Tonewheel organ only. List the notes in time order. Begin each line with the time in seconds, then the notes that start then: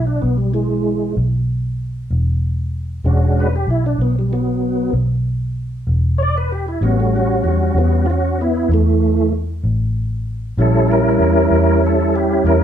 0.07 D4
0.22 B3
0.37 G3
0.54 E3 G#3
3.05 G#3 C#4 D4 F#4
3.40 B4
3.56 G4
3.71 E4
3.86 D4
4.02 B3
4.19 G3
4.33 F#3 B3
6.18 C#5
6.23 D5
6.38 B4
6.52 G4
6.68 E4
6.82 G3 B3 C#4 F#4
7.00 A3
7.16 G3
7.44 F#3
7.48 G3
7.78 G3 B3 C#4 F#4
8.06 C#4 F4
8.11 F#4
8.41 B3 E4
8.72 E3 A3
10.58 G3 C#4 E4 A4
10.88 A4 A#4
11.86 A4
12.16 G4
12.46 C#4 A#4